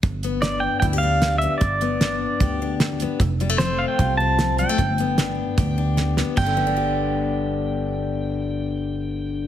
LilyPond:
<<
  \new Staff \with { instrumentName = "Pedal steel guitar" } { \time 4/4 \key g \mixolydian \tempo 4 = 151 r4 d''8 g''8 g''8 f''4 e''8 | d''2. r4 | r4 c''8 f''16 g''8. a''4 g''8~ | g''2.~ g''8 r8 |
g''1~ | g''1 | }
  \new Staff \with { instrumentName = "Steel-string acoustic guitar" } { \time 4/4 \key g \mixolydian << { r8 b8 d'4 e'16 g'16 d'4 b8 | r8 b8 d'4 g'8 d'4 b8 | r8 g16 a16 c'4 f'8 c'4 g16 a16 | r8 b8 d'4 g'8 d'4 b8 |
<d b d' g'>1~ | <d b d' g'>1 | } \\ { g,4 d4 g,4 d4 | g,4 d4 g,4 d4 | f,4 f4 c4 f4 | g,4 d4 g,4 d4 |
g,1~ | g,1 | } >> }
  \new Staff \with { instrumentName = "Upright bass" } { \clef bass \time 4/4 \key g \mixolydian g,,2 d,2 | g,,2 d,2 | f,,2 c,2 | g,,2 d,2 |
g,,1~ | g,,1 | }
  \new DrumStaff \with { instrumentName = "Drums" } \drummode { \time 4/4 <hh bd>8 hh8 <hh sn>4 <hh bd>4 <hh sn>8 hh8 | <hh bd>8 hh8 <hh sn>4 <hh bd>4 <hh sn>8 hh8 | <hh bd>8 hh8 <hh sn>4 <hh bd>4 <hh sn>8 hh8 | <hh bd>8 hh8 <hh sn>4 <hh bd>4 sn8 sn8 |
<cymc bd>4 r4 r4 r4 | r4 r4 r4 r4 | }
>>